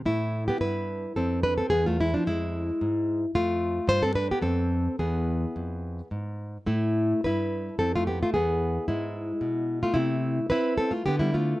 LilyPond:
\new Staff \with { instrumentName = "Nylon-string guitar" } { \time 3/4 \key a \minor \tempo 4 = 110 << { <a e'>8. <b g'>16 <e' b'>4 <c' a'>8 <d' b'>16 <c' a'>16 | <b gis'>16 <a f'>16 <gis e'>16 <f d'>16 <gis e'>4.~ <gis e'>16 r16 | <a f'>4 <f' c''>16 <c' a'>16 <d' b'>16 <b g'>16 <c' a'>4 | <b gis'>2 r4 |
<a e'>4 <e' b'>4 <c' a'>16 <a f'>16 <b g'>16 <a f'>16 | <b gis'>4 <gis e'>4.~ <gis e'>16 <a f'>16 | <a e'>4 <e' b'>8 <c' a'>16 <a f'>16 <b g'>16 <g e'>16 <a f'>8 | } \\ { a,4 g,4 f,4 | e,4 f,4 gis,4 | f,4 g,4 f,4 | e,4 f,4 gis,4 |
a,4 g,4 f,4 | e,4 gis,4 b,4 | c4 c'4 d4 | } >> }